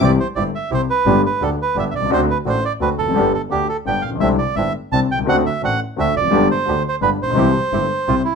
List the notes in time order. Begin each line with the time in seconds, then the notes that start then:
0.00 C2 C3 E3 G3 C4 E4 G4
0.04 D5
0.20 C5
0.35 G1 G2 C4 E4 G4 D5
0.55 E5
0.70 C2 C3 C4 E4 G4 C5
0.90 B4
1.06 G1 G2 D3 G3 B3 D4 G4
1.26 B4
1.40 D2 D3 B3 D4 G4 A4
1.62 B4
1.75 G1 G2 B3 D4 G4
1.79 E5
1.91 C2 E5
1.95 B1 D5
2.02 C2 C#2
2.10 D2 D3 A3 C4 D4 F#4 C5
2.30 B4
2.45 A1 A2 C4 D4 F#4
2.49 C5
2.65 D5
2.80 D2 D3 C4 D4 F#4 B4
2.98 F1 E2 A4
3.07 F2 F#2
3.14 G1 G2 D3 G3 B3 D4 G4
3.34 A4
3.50 D2 D3 B3 D4 G4
3.69 A4
3.85 G1 G2 B3 D4 G4 G5
4.02 A1 A#1 F5
4.11 A#1
4.15 B1
4.20 C2 C3 D3 G3 C4 D4 E4 E5
4.38 D5
4.55 G1 G2 C4 D4 E4 E5
4.92 C2 C3 C4 D4 E4 A5
5.11 B1 C2 G5
5.19 C2
5.23 C#2 D2 D3 A3 C4 D4 F#4
5.27 D2 C4 F#4 F#5
5.46 E5
5.61 A1 A2 C4 D4 F#4 F#5
5.96 D2 D3 C4 D4 F#4 E5
6.16 F1 E2 D5
6.22 F2
6.27 G1 F#2 G2 D3 G3 B3 G4
6.32 G1 B3 D4 G4
6.51 C5
6.66 D2 D3 B3 D4 G4
6.89 C5
7.01 G1 G2 B3 D4 G4 B4
7.22 A1 A#1 C5
7.28 A#1 B1
7.35 C2 C3 E3 G3 C4 E4 G4
7.72 G1 G2 C4 E4 G4
8.07 C2 C3 C4 E4 F4 G4
8.25 E4